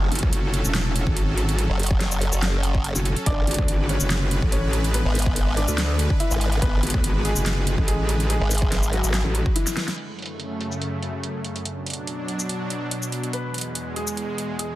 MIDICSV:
0, 0, Header, 1, 6, 480
1, 0, Start_track
1, 0, Key_signature, 3, "minor"
1, 0, Tempo, 419580
1, 1813, Time_signature, 4, 2, 24, 8
1, 16877, End_track
2, 0, Start_track
2, 0, Title_t, "Grand piano"
2, 0, Program_c, 0, 0
2, 3733, Note_on_c, 0, 62, 77
2, 3733, Note_on_c, 0, 74, 105
2, 4363, Note_off_c, 0, 62, 0
2, 4363, Note_off_c, 0, 74, 0
2, 4453, Note_on_c, 0, 61, 77
2, 4453, Note_on_c, 0, 73, 92
2, 5083, Note_off_c, 0, 61, 0
2, 5083, Note_off_c, 0, 73, 0
2, 5172, Note_on_c, 0, 61, 76
2, 5172, Note_on_c, 0, 73, 86
2, 5505, Note_off_c, 0, 61, 0
2, 5505, Note_off_c, 0, 73, 0
2, 5653, Note_on_c, 0, 59, 78
2, 5653, Note_on_c, 0, 71, 98
2, 6283, Note_off_c, 0, 59, 0
2, 6283, Note_off_c, 0, 71, 0
2, 6373, Note_on_c, 0, 62, 77
2, 6373, Note_on_c, 0, 74, 93
2, 7003, Note_off_c, 0, 62, 0
2, 7003, Note_off_c, 0, 74, 0
2, 7093, Note_on_c, 0, 64, 80
2, 7093, Note_on_c, 0, 76, 87
2, 7425, Note_off_c, 0, 64, 0
2, 7425, Note_off_c, 0, 76, 0
2, 7573, Note_on_c, 0, 59, 79
2, 7573, Note_on_c, 0, 71, 104
2, 8203, Note_off_c, 0, 59, 0
2, 8203, Note_off_c, 0, 71, 0
2, 8293, Note_on_c, 0, 56, 82
2, 8294, Note_on_c, 0, 68, 98
2, 8923, Note_off_c, 0, 56, 0
2, 8923, Note_off_c, 0, 68, 0
2, 9013, Note_on_c, 0, 68, 86
2, 9014, Note_on_c, 0, 56, 73
2, 9345, Note_off_c, 0, 56, 0
2, 9345, Note_off_c, 0, 68, 0
2, 9493, Note_on_c, 0, 56, 75
2, 9493, Note_on_c, 0, 68, 99
2, 10123, Note_off_c, 0, 56, 0
2, 10123, Note_off_c, 0, 68, 0
2, 10212, Note_on_c, 0, 66, 94
2, 10213, Note_on_c, 0, 54, 75
2, 10843, Note_off_c, 0, 54, 0
2, 10843, Note_off_c, 0, 66, 0
2, 10933, Note_on_c, 0, 52, 75
2, 10933, Note_on_c, 0, 64, 89
2, 11265, Note_off_c, 0, 52, 0
2, 11265, Note_off_c, 0, 64, 0
2, 15253, Note_on_c, 0, 71, 88
2, 15883, Note_off_c, 0, 71, 0
2, 15973, Note_on_c, 0, 68, 89
2, 16603, Note_off_c, 0, 68, 0
2, 16693, Note_on_c, 0, 68, 78
2, 16877, Note_off_c, 0, 68, 0
2, 16877, End_track
3, 0, Start_track
3, 0, Title_t, "Supersaw synth"
3, 0, Program_c, 1, 81
3, 0, Note_on_c, 1, 54, 84
3, 0, Note_on_c, 1, 61, 76
3, 0, Note_on_c, 1, 69, 89
3, 3688, Note_off_c, 1, 54, 0
3, 3688, Note_off_c, 1, 61, 0
3, 3688, Note_off_c, 1, 69, 0
3, 3733, Note_on_c, 1, 50, 74
3, 3733, Note_on_c, 1, 56, 82
3, 3733, Note_on_c, 1, 71, 94
3, 11368, Note_off_c, 1, 50, 0
3, 11368, Note_off_c, 1, 56, 0
3, 11368, Note_off_c, 1, 71, 0
3, 11413, Note_on_c, 1, 42, 74
3, 11413, Note_on_c, 1, 49, 69
3, 11413, Note_on_c, 1, 57, 87
3, 13314, Note_off_c, 1, 42, 0
3, 13314, Note_off_c, 1, 49, 0
3, 13314, Note_off_c, 1, 57, 0
3, 13333, Note_on_c, 1, 47, 75
3, 13333, Note_on_c, 1, 54, 71
3, 13333, Note_on_c, 1, 62, 85
3, 15234, Note_off_c, 1, 54, 0
3, 15234, Note_off_c, 1, 62, 0
3, 15253, Note_on_c, 1, 40, 74
3, 15253, Note_on_c, 1, 56, 86
3, 16877, Note_off_c, 1, 40, 0
3, 16877, Note_off_c, 1, 47, 0
3, 16877, Note_off_c, 1, 56, 0
3, 16877, End_track
4, 0, Start_track
4, 0, Title_t, "Wobble bass"
4, 0, Program_c, 2, 39
4, 134, Note_on_c, 2, 30, 109
4, 241, Note_off_c, 2, 30, 0
4, 262, Note_on_c, 2, 37, 98
4, 356, Note_off_c, 2, 37, 0
4, 374, Note_on_c, 2, 30, 103
4, 721, Note_off_c, 2, 30, 0
4, 742, Note_on_c, 2, 28, 100
4, 1201, Note_off_c, 2, 28, 0
4, 1221, Note_on_c, 2, 32, 94
4, 1921, Note_off_c, 2, 32, 0
4, 3381, Note_on_c, 2, 30, 102
4, 3601, Note_off_c, 2, 30, 0
4, 3974, Note_on_c, 2, 32, 103
4, 4081, Note_off_c, 2, 32, 0
4, 4101, Note_on_c, 2, 38, 99
4, 4196, Note_off_c, 2, 38, 0
4, 4214, Note_on_c, 2, 32, 99
4, 4561, Note_off_c, 2, 32, 0
4, 4581, Note_on_c, 2, 30, 102
4, 5041, Note_off_c, 2, 30, 0
4, 5061, Note_on_c, 2, 33, 99
4, 5761, Note_off_c, 2, 33, 0
4, 6501, Note_on_c, 2, 38, 99
4, 6961, Note_off_c, 2, 38, 0
4, 7814, Note_on_c, 2, 32, 103
4, 7921, Note_off_c, 2, 32, 0
4, 7941, Note_on_c, 2, 38, 92
4, 8036, Note_off_c, 2, 38, 0
4, 8054, Note_on_c, 2, 32, 99
4, 8401, Note_off_c, 2, 32, 0
4, 8421, Note_on_c, 2, 30, 98
4, 8881, Note_off_c, 2, 30, 0
4, 8901, Note_on_c, 2, 33, 104
4, 9601, Note_off_c, 2, 33, 0
4, 10582, Note_on_c, 2, 33, 94
4, 10801, Note_off_c, 2, 33, 0
4, 16877, End_track
5, 0, Start_track
5, 0, Title_t, "Wobble bass"
5, 0, Program_c, 3, 39
5, 0, Note_on_c, 3, 30, 102
5, 116, Note_off_c, 3, 30, 0
5, 1941, Note_on_c, 3, 30, 102
5, 2641, Note_off_c, 3, 30, 0
5, 2661, Note_on_c, 3, 30, 93
5, 3360, Note_off_c, 3, 30, 0
5, 3734, Note_on_c, 3, 32, 99
5, 3956, Note_off_c, 3, 32, 0
5, 5781, Note_on_c, 3, 32, 102
5, 6481, Note_off_c, 3, 32, 0
5, 7221, Note_on_c, 3, 32, 102
5, 7556, Note_off_c, 3, 32, 0
5, 7574, Note_on_c, 3, 32, 104
5, 7796, Note_off_c, 3, 32, 0
5, 9621, Note_on_c, 3, 32, 105
5, 10321, Note_off_c, 3, 32, 0
5, 10341, Note_on_c, 3, 32, 97
5, 10561, Note_off_c, 3, 32, 0
5, 16877, End_track
6, 0, Start_track
6, 0, Title_t, "Drums"
6, 133, Note_on_c, 9, 42, 49
6, 176, Note_off_c, 9, 42, 0
6, 176, Note_on_c, 9, 42, 64
6, 213, Note_off_c, 9, 42, 0
6, 213, Note_on_c, 9, 42, 78
6, 261, Note_on_c, 9, 36, 116
6, 328, Note_off_c, 9, 42, 0
6, 374, Note_on_c, 9, 42, 84
6, 376, Note_off_c, 9, 36, 0
6, 488, Note_off_c, 9, 42, 0
6, 614, Note_on_c, 9, 42, 52
6, 728, Note_off_c, 9, 42, 0
6, 741, Note_on_c, 9, 82, 77
6, 853, Note_on_c, 9, 38, 127
6, 853, Note_on_c, 9, 39, 90
6, 853, Note_on_c, 9, 42, 74
6, 856, Note_off_c, 9, 82, 0
6, 968, Note_off_c, 9, 38, 0
6, 968, Note_off_c, 9, 39, 0
6, 968, Note_off_c, 9, 42, 0
6, 1094, Note_on_c, 9, 42, 55
6, 1208, Note_off_c, 9, 42, 0
6, 1221, Note_on_c, 9, 36, 68
6, 1333, Note_on_c, 9, 42, 75
6, 1336, Note_off_c, 9, 36, 0
6, 1448, Note_off_c, 9, 42, 0
6, 1574, Note_on_c, 9, 42, 55
6, 1688, Note_off_c, 9, 42, 0
6, 1701, Note_on_c, 9, 42, 37
6, 1814, Note_off_c, 9, 42, 0
6, 1814, Note_on_c, 9, 42, 79
6, 1928, Note_off_c, 9, 42, 0
6, 2054, Note_on_c, 9, 42, 49
6, 2096, Note_off_c, 9, 42, 0
6, 2096, Note_on_c, 9, 42, 59
6, 2134, Note_off_c, 9, 42, 0
6, 2134, Note_on_c, 9, 42, 74
6, 2181, Note_on_c, 9, 36, 120
6, 2248, Note_off_c, 9, 42, 0
6, 2294, Note_on_c, 9, 38, 63
6, 2294, Note_on_c, 9, 42, 77
6, 2295, Note_off_c, 9, 36, 0
6, 2408, Note_off_c, 9, 38, 0
6, 2408, Note_off_c, 9, 42, 0
6, 2421, Note_on_c, 9, 82, 62
6, 2533, Note_on_c, 9, 42, 52
6, 2535, Note_off_c, 9, 82, 0
6, 2648, Note_off_c, 9, 42, 0
6, 2661, Note_on_c, 9, 82, 79
6, 2774, Note_on_c, 9, 38, 120
6, 2774, Note_on_c, 9, 39, 93
6, 2774, Note_on_c, 9, 42, 73
6, 2775, Note_off_c, 9, 82, 0
6, 2888, Note_off_c, 9, 38, 0
6, 2888, Note_off_c, 9, 39, 0
6, 2888, Note_off_c, 9, 42, 0
6, 3014, Note_on_c, 9, 42, 50
6, 3128, Note_off_c, 9, 42, 0
6, 3141, Note_on_c, 9, 36, 66
6, 3253, Note_on_c, 9, 42, 75
6, 3255, Note_off_c, 9, 36, 0
6, 3368, Note_off_c, 9, 42, 0
6, 3381, Note_on_c, 9, 82, 79
6, 3493, Note_on_c, 9, 42, 53
6, 3495, Note_off_c, 9, 82, 0
6, 3608, Note_off_c, 9, 42, 0
6, 3621, Note_on_c, 9, 42, 35
6, 3733, Note_off_c, 9, 42, 0
6, 3733, Note_on_c, 9, 42, 78
6, 3734, Note_on_c, 9, 36, 121
6, 3848, Note_off_c, 9, 36, 0
6, 3848, Note_off_c, 9, 42, 0
6, 3973, Note_on_c, 9, 42, 49
6, 4015, Note_off_c, 9, 42, 0
6, 4015, Note_on_c, 9, 42, 61
6, 4053, Note_off_c, 9, 42, 0
6, 4053, Note_on_c, 9, 42, 82
6, 4101, Note_on_c, 9, 36, 110
6, 4167, Note_off_c, 9, 42, 0
6, 4213, Note_on_c, 9, 42, 81
6, 4216, Note_off_c, 9, 36, 0
6, 4328, Note_off_c, 9, 42, 0
6, 4453, Note_on_c, 9, 42, 51
6, 4568, Note_off_c, 9, 42, 0
6, 4581, Note_on_c, 9, 82, 80
6, 4693, Note_on_c, 9, 38, 117
6, 4693, Note_on_c, 9, 39, 83
6, 4693, Note_on_c, 9, 42, 75
6, 4695, Note_off_c, 9, 82, 0
6, 4808, Note_off_c, 9, 38, 0
6, 4808, Note_off_c, 9, 39, 0
6, 4808, Note_off_c, 9, 42, 0
6, 4933, Note_on_c, 9, 42, 54
6, 5048, Note_off_c, 9, 42, 0
6, 5061, Note_on_c, 9, 36, 65
6, 5174, Note_on_c, 9, 42, 78
6, 5175, Note_off_c, 9, 36, 0
6, 5288, Note_off_c, 9, 42, 0
6, 5413, Note_on_c, 9, 42, 53
6, 5528, Note_off_c, 9, 42, 0
6, 5541, Note_on_c, 9, 42, 35
6, 5654, Note_off_c, 9, 42, 0
6, 5654, Note_on_c, 9, 42, 77
6, 5768, Note_off_c, 9, 42, 0
6, 5894, Note_on_c, 9, 42, 47
6, 5936, Note_off_c, 9, 42, 0
6, 5936, Note_on_c, 9, 42, 66
6, 5974, Note_off_c, 9, 42, 0
6, 5974, Note_on_c, 9, 42, 80
6, 6021, Note_on_c, 9, 36, 104
6, 6088, Note_off_c, 9, 42, 0
6, 6134, Note_on_c, 9, 42, 83
6, 6136, Note_off_c, 9, 36, 0
6, 6248, Note_off_c, 9, 42, 0
6, 6374, Note_on_c, 9, 42, 50
6, 6488, Note_off_c, 9, 42, 0
6, 6501, Note_on_c, 9, 82, 85
6, 6614, Note_on_c, 9, 38, 118
6, 6614, Note_on_c, 9, 39, 84
6, 6614, Note_on_c, 9, 42, 80
6, 6615, Note_off_c, 9, 82, 0
6, 6728, Note_off_c, 9, 38, 0
6, 6728, Note_off_c, 9, 39, 0
6, 6728, Note_off_c, 9, 42, 0
6, 6854, Note_on_c, 9, 42, 54
6, 6968, Note_off_c, 9, 42, 0
6, 6981, Note_on_c, 9, 36, 64
6, 7094, Note_on_c, 9, 42, 80
6, 7096, Note_off_c, 9, 36, 0
6, 7208, Note_off_c, 9, 42, 0
6, 7221, Note_on_c, 9, 82, 83
6, 7334, Note_on_c, 9, 42, 54
6, 7335, Note_off_c, 9, 82, 0
6, 7448, Note_off_c, 9, 42, 0
6, 7462, Note_on_c, 9, 42, 37
6, 7574, Note_off_c, 9, 42, 0
6, 7574, Note_on_c, 9, 36, 124
6, 7574, Note_on_c, 9, 42, 86
6, 7688, Note_off_c, 9, 36, 0
6, 7688, Note_off_c, 9, 42, 0
6, 7814, Note_on_c, 9, 42, 52
6, 7856, Note_off_c, 9, 42, 0
6, 7856, Note_on_c, 9, 42, 66
6, 7894, Note_off_c, 9, 42, 0
6, 7894, Note_on_c, 9, 42, 82
6, 7941, Note_on_c, 9, 36, 102
6, 8008, Note_off_c, 9, 42, 0
6, 8054, Note_on_c, 9, 42, 87
6, 8056, Note_off_c, 9, 36, 0
6, 8168, Note_off_c, 9, 42, 0
6, 8293, Note_on_c, 9, 42, 52
6, 8408, Note_off_c, 9, 42, 0
6, 8421, Note_on_c, 9, 82, 85
6, 8533, Note_on_c, 9, 38, 112
6, 8533, Note_on_c, 9, 39, 86
6, 8533, Note_on_c, 9, 42, 84
6, 8535, Note_off_c, 9, 82, 0
6, 8648, Note_off_c, 9, 38, 0
6, 8648, Note_off_c, 9, 39, 0
6, 8648, Note_off_c, 9, 42, 0
6, 8774, Note_on_c, 9, 42, 56
6, 8888, Note_off_c, 9, 42, 0
6, 8901, Note_on_c, 9, 36, 63
6, 9014, Note_on_c, 9, 42, 80
6, 9016, Note_off_c, 9, 36, 0
6, 9128, Note_off_c, 9, 42, 0
6, 9254, Note_on_c, 9, 42, 58
6, 9368, Note_off_c, 9, 42, 0
6, 9382, Note_on_c, 9, 42, 39
6, 9494, Note_off_c, 9, 42, 0
6, 9494, Note_on_c, 9, 42, 86
6, 9609, Note_off_c, 9, 42, 0
6, 9734, Note_on_c, 9, 42, 54
6, 9734, Note_on_c, 9, 82, 68
6, 9776, Note_off_c, 9, 42, 0
6, 9776, Note_on_c, 9, 42, 68
6, 9814, Note_off_c, 9, 42, 0
6, 9814, Note_on_c, 9, 42, 84
6, 9849, Note_off_c, 9, 82, 0
6, 9861, Note_on_c, 9, 36, 108
6, 9928, Note_off_c, 9, 42, 0
6, 9974, Note_on_c, 9, 38, 65
6, 9974, Note_on_c, 9, 42, 87
6, 9976, Note_off_c, 9, 36, 0
6, 10088, Note_off_c, 9, 38, 0
6, 10088, Note_off_c, 9, 42, 0
6, 10101, Note_on_c, 9, 82, 65
6, 10214, Note_on_c, 9, 42, 52
6, 10216, Note_off_c, 9, 82, 0
6, 10328, Note_off_c, 9, 42, 0
6, 10341, Note_on_c, 9, 82, 84
6, 10454, Note_on_c, 9, 38, 109
6, 10454, Note_on_c, 9, 39, 89
6, 10454, Note_on_c, 9, 42, 86
6, 10456, Note_off_c, 9, 82, 0
6, 10568, Note_off_c, 9, 38, 0
6, 10568, Note_off_c, 9, 39, 0
6, 10568, Note_off_c, 9, 42, 0
6, 10694, Note_on_c, 9, 42, 57
6, 10808, Note_off_c, 9, 42, 0
6, 10821, Note_on_c, 9, 36, 65
6, 10933, Note_on_c, 9, 42, 84
6, 10935, Note_off_c, 9, 36, 0
6, 11048, Note_off_c, 9, 42, 0
6, 11061, Note_on_c, 9, 38, 54
6, 11061, Note_on_c, 9, 82, 86
6, 11174, Note_off_c, 9, 38, 0
6, 11174, Note_on_c, 9, 38, 80
6, 11174, Note_on_c, 9, 42, 56
6, 11175, Note_off_c, 9, 82, 0
6, 11288, Note_off_c, 9, 38, 0
6, 11288, Note_off_c, 9, 42, 0
6, 11301, Note_on_c, 9, 38, 81
6, 11301, Note_on_c, 9, 42, 38
6, 11413, Note_off_c, 9, 42, 0
6, 11413, Note_on_c, 9, 42, 75
6, 11413, Note_on_c, 9, 49, 75
6, 11415, Note_off_c, 9, 38, 0
6, 11528, Note_off_c, 9, 42, 0
6, 11528, Note_off_c, 9, 49, 0
6, 11653, Note_on_c, 9, 42, 44
6, 11696, Note_off_c, 9, 42, 0
6, 11696, Note_on_c, 9, 42, 62
6, 11733, Note_off_c, 9, 42, 0
6, 11733, Note_on_c, 9, 42, 78
6, 11847, Note_off_c, 9, 42, 0
6, 11893, Note_on_c, 9, 42, 77
6, 12007, Note_off_c, 9, 42, 0
6, 12133, Note_on_c, 9, 42, 48
6, 12247, Note_off_c, 9, 42, 0
6, 12261, Note_on_c, 9, 82, 69
6, 12373, Note_on_c, 9, 42, 74
6, 12375, Note_off_c, 9, 82, 0
6, 12487, Note_off_c, 9, 42, 0
6, 12613, Note_on_c, 9, 42, 49
6, 12727, Note_off_c, 9, 42, 0
6, 12853, Note_on_c, 9, 42, 74
6, 12967, Note_off_c, 9, 42, 0
6, 13093, Note_on_c, 9, 42, 52
6, 13207, Note_off_c, 9, 42, 0
6, 13221, Note_on_c, 9, 42, 36
6, 13333, Note_off_c, 9, 42, 0
6, 13333, Note_on_c, 9, 42, 77
6, 13448, Note_off_c, 9, 42, 0
6, 13573, Note_on_c, 9, 42, 45
6, 13615, Note_off_c, 9, 42, 0
6, 13615, Note_on_c, 9, 42, 60
6, 13653, Note_off_c, 9, 42, 0
6, 13653, Note_on_c, 9, 42, 73
6, 13767, Note_off_c, 9, 42, 0
6, 13813, Note_on_c, 9, 42, 75
6, 13927, Note_off_c, 9, 42, 0
6, 14053, Note_on_c, 9, 42, 45
6, 14167, Note_off_c, 9, 42, 0
6, 14180, Note_on_c, 9, 82, 68
6, 14293, Note_on_c, 9, 42, 74
6, 14295, Note_off_c, 9, 82, 0
6, 14407, Note_off_c, 9, 42, 0
6, 14533, Note_on_c, 9, 42, 49
6, 14647, Note_off_c, 9, 42, 0
6, 14773, Note_on_c, 9, 42, 76
6, 14888, Note_off_c, 9, 42, 0
6, 14901, Note_on_c, 9, 82, 74
6, 15013, Note_on_c, 9, 42, 53
6, 15015, Note_off_c, 9, 82, 0
6, 15128, Note_off_c, 9, 42, 0
6, 15141, Note_on_c, 9, 42, 35
6, 15253, Note_off_c, 9, 42, 0
6, 15253, Note_on_c, 9, 42, 72
6, 15368, Note_off_c, 9, 42, 0
6, 15493, Note_on_c, 9, 42, 44
6, 15536, Note_off_c, 9, 42, 0
6, 15536, Note_on_c, 9, 42, 56
6, 15573, Note_off_c, 9, 42, 0
6, 15573, Note_on_c, 9, 42, 71
6, 15688, Note_off_c, 9, 42, 0
6, 15733, Note_on_c, 9, 42, 70
6, 15848, Note_off_c, 9, 42, 0
6, 15974, Note_on_c, 9, 42, 43
6, 16088, Note_off_c, 9, 42, 0
6, 16101, Note_on_c, 9, 82, 73
6, 16214, Note_on_c, 9, 42, 74
6, 16216, Note_off_c, 9, 82, 0
6, 16328, Note_off_c, 9, 42, 0
6, 16454, Note_on_c, 9, 42, 47
6, 16568, Note_off_c, 9, 42, 0
6, 16694, Note_on_c, 9, 42, 72
6, 16808, Note_off_c, 9, 42, 0
6, 16877, End_track
0, 0, End_of_file